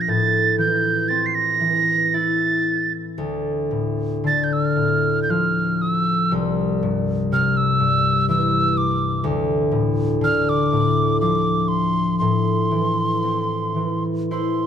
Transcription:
Already playing: A#2 F3 D4 F4
0.01 A#6
0.08 A2 A6
0.58 E3 G6
1.08 C4 A6
1.26 C7
1.35 A#6
1.61 E3
2.14 E4 A6
3.18 D2
3.71 A2
4.24 D3 A6
4.44 G6
4.53 E6
4.64 F6
4.76 A2
5.23 G6
5.29 F3 F6
5.82 E6
6.32 C2
6.83 G2
7.32 C3 F6
7.57 E6
7.80 G2
8.28 E3 E6
8.77 D6
9.24 D2
9.71 A2
10.21 D3 F6
10.49 D6
10.72 A2
11.21 F3 D6
11.68 C6
12.19 A2 C6
12.71 E3
13.23 C4
13.76 E3
14.31 E4 C5 C6

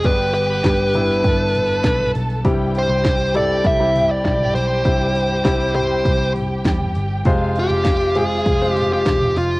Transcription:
0.04 G1 G2 D3 G3 B3 D4 G4 B4 G5, kick, open hi-hat
0.34 B4, open hi-hat
0.64 G1 G3 B3 D4 G4, kick, snare, open hi-hat
0.94 G3 B3 D4 E4, floor tom, open hi-hat
1.24 G1 A4 A5, kick, open hi-hat
1.55 floor tom, open hi-hat
1.84 B1, kick, snare, open hi-hat
1.99 floor tom
2.15 B1, open hi-hat
2.30 open hi-hat
2.44 C2 G2 G3 C4 E4 G4 G5, kick, open hi-hat
2.75 C5, open hi-hat
2.89 C2
3.05 kick, snare, open hi-hat
3.20 open hi-hat
3.34 G3 C4 E4 A4 D5, floor tom, open hi-hat
3.65 C2 E5, kick, open hi-hat
3.79 G3 C4 E4 G4
3.96 floor tom, open hi-hat
4.11 D5
4.25 B1, kick, snare, open hi-hat
4.40 floor tom
4.54 B1 C5, open hi-hat
4.85 C2 G2 G3 C4 E4 G4, kick, open hi-hat
5.15 open hi-hat
5.45 C2 G3 C4 E4 G4, kick, snare, open hi-hat
5.61 open hi-hat
5.75 G3 C4 E4 G4 C5, floor tom, open hi-hat
6.05 C2, kick, open hi-hat
6.36 floor tom, open hi-hat
6.65 E2, kick, snare, open hi-hat
6.80 floor tom
6.95 G1, open hi-hat
7.25 F1 C3 G#3 C4 F4 C5 F5, kick, open hi-hat
7.56 G4, open hi-hat
7.71 F1
7.85 kick, snare, open hi-hat
8.01 open hi-hat
8.15 G#3 C4 F4 G#4, floor tom, open hi-hat
8.46 F1, kick, open hi-hat
8.61 G#3 C4 F4 C5
8.71 G4
8.76 floor tom, open hi-hat
8.93 G4
9.06 E1, kick, snare, open hi-hat
9.21 floor tom
9.36 F1 F4, open hi-hat

